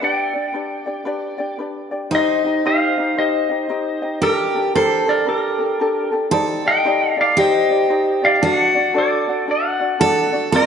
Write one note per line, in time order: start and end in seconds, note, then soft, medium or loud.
0.01 0.35 D4 medium
0.01 0.34 G4 medium
0.01 0.35 B4 medium
0.01 0.33 D5 medium
0.01 1.57 D5 medium
0.01 1.57 G5 medium
0.34 0.53 D4 soft
0.34 0.54 G4 soft
0.34 0.54 D5 soft
0.53 0.87 D4 medium
0.53 0.86 G4 medium
0.53 0.87 B4 medium
0.53 0.85 D5 medium
0.86 1.05 D4 soft
0.86 1.05 G4 medium
0.86 1.06 D5 medium
1.05 1.39 D4 medium
1.05 1.38 G4 medium
1.05 1.39 B4 medium
1.05 1.37 D5 medium
1.38 1.59 D4 medium
1.38 1.59 G4 soft
1.38 1.59 D5 medium
1.59 1.91 D4 medium
1.59 1.91 G4 medium
1.59 1.92 B4 medium
1.59 1.90 D5 medium
1.91 2.11 D4 soft
1.91 2.11 G4 soft
1.91 2.12 D5 medium
2.11 4.28 D#4 medium
2.11 2.45 D#4 medium
2.11 2.44 G4 medium
2.11 2.44 C5 medium
2.11 2.43 D#5 medium
2.15 2.63 C5 medium
2.15 2.67 D#5 medium
2.44 2.64 D#4 soft
2.44 2.65 G4 soft
2.44 2.65 D#5 soft
2.65 2.98 D#4 medium
2.65 2.97 G4 medium
2.65 2.98 C5 medium
2.65 3.15 C5 medium
2.65 2.96 D#5 medium
2.65 3.20 F5 loud
2.97 3.17 D#4 soft
2.97 3.17 G4 soft
2.97 3.17 D#5 medium
3.17 3.50 D#4 medium
3.17 3.49 G4 medium
3.17 3.50 C5 medium
3.17 4.20 C5 medium
3.17 4.26 D#5 medium
3.17 3.48 D#5 medium
3.50 3.69 D#4 soft
3.50 3.69 G4 soft
3.50 3.69 D#5 medium
3.69 4.02 D#4 medium
3.69 4.02 G4 medium
3.69 4.02 C5 medium
3.69 4.01 D#5 medium
4.02 4.22 D#4 soft
4.02 4.22 G4 soft
4.02 4.22 D#5 medium
4.22 4.55 D4 medium
4.22 4.75 G4 medium
4.22 4.54 G4 medium
4.22 4.72 G4 medium
4.22 4.54 A4 medium
4.22 4.55 A#4 medium
4.22 4.77 A#4 medium
4.55 4.74 D4 soft
4.55 4.74 G4 soft
4.55 4.75 A4 soft
4.75 5.07 D4 medium
4.75 5.06 G4 medium
4.75 6.30 A4 medium
4.75 5.05 A4 medium
4.75 5.07 A4 medium
4.75 5.07 A#4 medium
4.75 5.09 C5 medium
5.06 5.26 D4 soft
5.06 5.26 G4 soft
5.06 5.27 A4 medium
5.06 5.29 D5 medium
5.10 5.28 A#4 medium
5.26 5.60 D4 medium
5.26 5.59 G4 medium
5.26 5.58 A4 medium
5.26 5.60 A#4 medium
5.26 6.09 A#4 medium
5.30 6.10 G4 medium
5.59 5.80 D4 soft
5.59 5.79 G4 soft
5.59 5.79 A4 medium
5.80 6.12 D4 medium
5.80 6.11 G4 medium
5.80 6.10 A4 medium
5.80 6.12 A#4 medium
6.12 6.31 D4 soft
6.12 6.31 G4 medium
6.12 6.32 A4 medium
6.31 6.65 D#4 medium
6.31 6.64 G4 medium
6.31 7.36 A4 medium
6.31 6.64 C5 medium
6.31 6.63 D5 medium
6.65 6.84 D#4 soft
6.65 6.85 G4 soft
6.65 6.85 D5 medium
6.65 7.10 G5 loud
6.69 7.16 D#5 medium
6.85 7.18 D#4 medium
6.85 7.17 G4 medium
6.85 7.17 C5 medium
6.85 7.16 D5 medium
7.10 7.20 F5 loud
7.17 7.36 D#4 soft
7.17 7.37 G4 medium
7.17 7.37 D5 medium
7.17 7.38 F5 medium
7.21 7.38 D5 medium
7.37 7.70 D#4 medium
7.37 8.42 G4 medium
7.37 7.70 G4 medium
7.37 7.70 C5 medium
7.37 8.20 C5 medium
7.37 7.69 D5 medium
7.37 8.25 D#5 medium
7.70 7.89 D#4 soft
7.70 7.89 G4 soft
7.70 7.90 D5 medium
7.89 8.23 D#4 medium
7.89 8.22 G4 medium
7.89 8.22 C5 medium
7.89 8.21 D5 medium
8.22 8.42 D#4 soft
8.22 8.42 G4 soft
8.22 8.41 D5 soft
8.22 8.43 D5 medium
8.22 8.44 F5 medium
8.42 8.75 D4 medium
8.42 8.74 F#4 medium
8.42 10.00 F#4 medium
8.42 8.75 A4 medium
8.42 8.73 D5 medium
8.42 8.93 D5 medium
8.42 8.93 F#5 medium
8.74 8.93 D4 soft
8.74 8.94 F#4 medium
8.74 8.95 D5 soft
8.94 9.28 D4 medium
8.94 9.27 F#4 medium
8.94 9.27 A4 medium
8.94 9.26 D5 medium
8.98 9.46 A4 medium
8.98 9.50 D5 medium
9.28 9.47 D4 soft
9.28 9.48 F#4 medium
9.28 9.48 D5 medium
9.48 9.80 D4 medium
9.48 9.80 F#4 medium
9.48 9.80 A4 medium
9.48 9.78 D5 medium
9.48 10.30 D5 medium
9.48 10.30 F#5 medium
9.80 9.99 D4 soft
9.80 9.99 F#4 soft
9.80 10.00 D5 soft
9.99 10.33 D4 medium
9.99 10.32 F#4 medium
9.99 10.32 A4 medium
9.99 10.49 A4 loud
9.99 10.31 D5 medium
10.32 10.53 D4 soft
10.32 10.53 F#4 medium
10.32 10.52 D5 medium
10.52 10.66 C4 medium
10.52 10.66 F4 medium
10.52 10.66 A#4 medium
10.52 10.66 C5 medium
10.52 10.66 D#5 medium